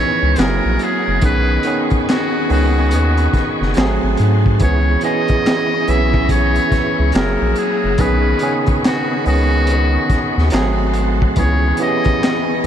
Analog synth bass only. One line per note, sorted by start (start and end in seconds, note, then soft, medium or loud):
0.23 0.36 C#2 medium
0.39 0.61 F#1 loud
0.65 0.78 A#1 loud
1.08 1.21 F#1 medium
1.23 1.59 B1 loud
2.50 2.94 C#2 medium
2.93 3.28 D#2 medium
3.34 3.45 F#1 soft
3.61 3.74 F#1 medium
3.77 3.99 G#1 loud
4.03 4.16 G#1 medium
4.20 4.62 G#2 loud
4.61 4.97 C#2 loud
5.88 6.60 B1 medium
6.72 6.83 C#2 soft
6.99 7.12 C#2 medium
7.15 7.37 F#1 loud
7.41 7.54 A#1 loud
7.84 7.97 F#1 medium
7.99 8.35 B1 loud
9.26 9.98 C#2 medium
10.10 10.21 D#2 medium
10.38 10.50 D#2 medium
10.53 11.25 G#1 loud
11.37 11.73 C#2 loud